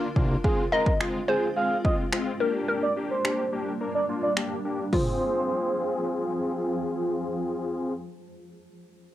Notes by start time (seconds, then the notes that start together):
Already playing: D3 D4 F4 A#4
0.16 C2 A#3 D4 F4, kick
0.44 G#3 C4 F4 G#4, kick
0.72 G#3 C4 F4 A#4 D#5
0.86 kick
1.00 G#3 C4 F4, finger snap
1.28 G#3 C4 F4 G#4 C5
1.56 G#3 C4 G#4 F5
1.84 G#3 C4 F4 D#5, kick
2.12 G#3 C4 F4, finger snap
2.40 G3 A#3 D4 G4 A#4
2.68 A#4
2.83 D5
2.96 A#3 D4 G4
3.11 C5
3.24 A#3 D4 G4, finger snap
3.52 A#3 D4 G4
3.80 A#3 D4 A#4
3.95 D5
4.09 A#3 D4 F4
4.23 D5
4.37 A#3 D4 G4, finger snap
4.65 A#3 D4 G4
4.93 F3 C4 F4 G#4 C5, kick, floor tom, open hi-hat